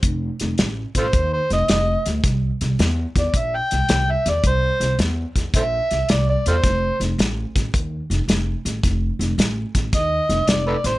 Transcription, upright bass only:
X:1
M:4/4
L:1/8
Q:"Swing" 1/4=109
K:F
V:1 name="Upright bass" clef=bass
F,,, F,,, A,,, A,,, _E,, F,,, F,,, D,, | C,, C,, E,, E,, B,,, C,, C,, E,, | C,, C,, E,, E,, B,,, C,, C,, E,, | F,,, F,,, A,,, A,,, _E,, F,,, F,,, A,,, |
F,,, F,,, A,,, A,,, _E,, F,,, F,,, A,,, |]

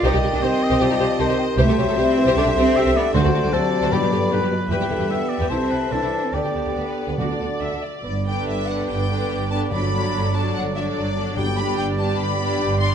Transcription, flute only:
X:1
M:4/4
L:1/8
Q:1/4=147
K:Cdor
V:1 name="Flute"
g6 a g | [K:G] e8 | f2 a a b3 z | g2 g2 a4 |
g4 f3 z | z8 | z8 | z8 |]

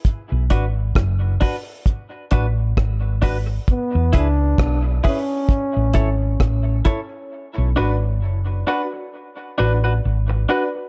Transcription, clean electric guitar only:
X:1
M:4/4
L:1/16
Q:"Swing 16ths" 1/4=66
K:Bdor
V:1 name="Clean electric guitar"
z2 [DFB] z3 [DFB] z3 [DFB] z3 [DFB] z | z2 [EGB] z3 [EGB] z3 [EAc] z3 [EAc] z | z2 [DFB] z3 [DFB] z3 [DFB] [DFB] z2 [DFB] z |]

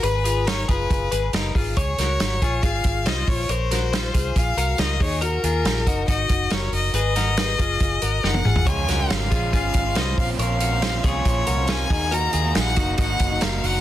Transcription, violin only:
X:1
M:4/4
L:1/8
Q:1/4=139
K:Db
V:1 name="Violin"
_c2 d c4 z | d4 f2 e d | c4 f2 e d | B4 e2 d e |
e6 g2 | a2 f2 f2 e f | f3 d3 a2 | b2 g2 g2 f g |]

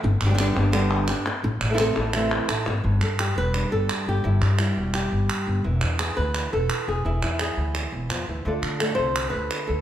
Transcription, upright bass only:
X:1
M:4/4
L:1/8
Q:1/4=171
K:none
V:1 name="Upright bass" clef=bass
G,,, G,,,2 G,,,4 z | A,,, A,,,2 A,,,3 A,,, ^G,,, | G,,, G,,2 E,,,2 G,,, z G,,, | G,,, G,,2 E,,,2 G,,, z G,,, |
E,,, E,,2 D,,2 E,,, z E,,, | E,,, E,,2 D,,2 E,,, E,, D,, | D,, D,2 C,,2 D,, z D,, |]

